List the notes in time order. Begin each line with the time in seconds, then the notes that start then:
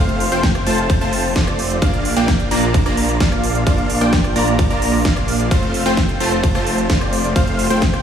Already playing: F1 A3 C4 F4 C5 F5
0.09 closed hi-hat
0.20 open hi-hat
0.32 F1 A3 C4 F4 C5 G5, closed hi-hat
0.43 kick, snare, closed hi-hat, ride
0.55 cross-stick, closed hi-hat
0.67 F1 A3 C4 F4 C5 A5, open hi-hat
0.78 closed hi-hat
0.90 kick, closed hi-hat, ride
1.01 F1 A3 C4 F4 C5 A5, closed hi-hat
1.13 open hi-hat
1.24 open hi-hat
1.36 F1 A3 C4 F4 C5 D5, kick, snare, closed hi-hat, ride
1.47 cross-stick, closed hi-hat
1.59 open hi-hat
1.70 closed hi-hat
1.82 A#1 A#3 D4 F4 D5 F5, kick, closed hi-hat, ride
1.94 closed hi-hat
2.05 open hi-hat
2.17 A#1 A#3 D4 F4 D5 G5, closed hi-hat
2.28 kick, snare, closed hi-hat, ride
2.40 closed hi-hat
2.51 A#1 A#3 D4 F4 D5 A#5, open hi-hat
2.63 closed hi-hat
2.74 kick, closed hi-hat, ride
2.86 A#1 A#3 D4 F4 D5 A#5, cross-stick, closed hi-hat
2.97 open hi-hat
3.09 closed hi-hat
3.20 A#1 A#3 D4 F4 D5 F5, kick, snare, closed hi-hat, ride
3.32 cross-stick, closed hi-hat
3.44 open hi-hat
3.55 closed hi-hat
3.67 A#1 A#3 D4 F4 D5 F5, kick, closed hi-hat, ride
3.78 closed hi-hat
3.90 open hi-hat
4.01 A#1 A#3 D4 F4 D5 G5, closed hi-hat
4.13 kick, snare, closed hi-hat, ride
4.24 cross-stick, closed hi-hat
4.36 A#1 A#3 D4 F4 D5 A#5, open hi-hat
4.47 closed hi-hat
4.59 kick, closed hi-hat, ride
4.70 A#1 A#3 D4 F4 D5 A#5, closed hi-hat
4.82 open hi-hat
4.94 open hi-hat
5.05 A#1 A#3 D4 F4 D5 F5, kick, snare, closed hi-hat, ride
5.17 cross-stick, closed hi-hat
5.28 open hi-hat
5.40 closed hi-hat
5.51 F1 A3 C4 F4 C5 F5, kick, closed hi-hat, ride
5.63 closed hi-hat
5.74 open hi-hat
5.86 F1 A3 C4 F4 C5 G5, closed hi-hat
5.97 kick, snare, closed hi-hat, ride
6.09 closed hi-hat
6.20 F1 A3 C4 F4 C5 A5, open hi-hat
6.32 closed hi-hat
6.43 kick, closed hi-hat, ride
6.55 F1 A3 C4 F4 C5 A5, cross-stick, closed hi-hat
6.67 open hi-hat
6.78 closed hi-hat
6.90 F1 A3 C4 F4 C5 D5, kick, snare, closed hi-hat, ride
7.01 cross-stick, closed hi-hat
7.13 open hi-hat
7.24 closed hi-hat
7.36 F1 A3 C4 F4 C5 F5, kick, closed hi-hat, ride
7.47 closed hi-hat
7.59 open hi-hat
7.70 F1 A3 C4 F4 C5 G5, closed hi-hat
7.82 kick, snare, closed hi-hat, ride
7.93 cross-stick, closed hi-hat